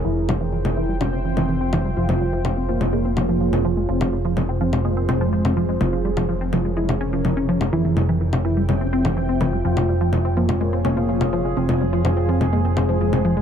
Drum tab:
CG |--O--O--O--O--O-|-O--O--O--O--O--|-O--O--O--O--O--|O--O--O--O--O--O|

CG |--O--O--O--O--O-|-O--O--O--O--O--|-O--O--O--O--O--|